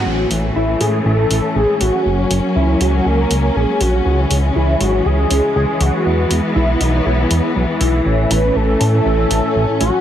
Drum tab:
HH |-o-o-o-o|-o-o-o-o|-o-o-o-o|-o-o-o-o|

HH |-o-o-o-o|